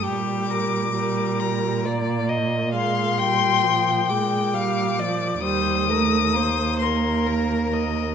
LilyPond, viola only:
\new Staff \with { instrumentName = "Viola" } { \clef bass \time 3/4 \key g \minor \tempo 4 = 67 g4 g4 bes4 | aes8 g8 f8 aes8 g8 f8 | g8 a8 bes2 | }